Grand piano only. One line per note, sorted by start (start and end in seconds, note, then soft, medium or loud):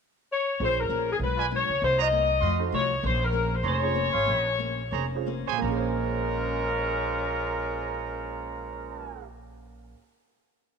0.60 1.21 C#4 soft
0.60 1.21 F4 soft
0.60 1.21 G#4 soft
0.60 1.21 C5 medium
2.59 2.70 D#4 medium
2.59 2.71 F#4 soft
2.59 2.71 A4 soft
2.59 2.71 C5 medium
3.83 3.94 C#4 medium
3.83 3.94 F4 soft
3.83 3.95 G#4 soft
3.83 3.94 C5 medium
5.15 5.26 C#4 soft
5.15 5.27 F4 medium
5.15 5.27 G#4 soft
5.15 5.27 C5 medium
5.52 9.91 A#2 medium
5.58 9.94 A#3 medium
5.64 9.97 C#4 medium
5.71 10.01 G#4 soft
5.76 10.04 C5 medium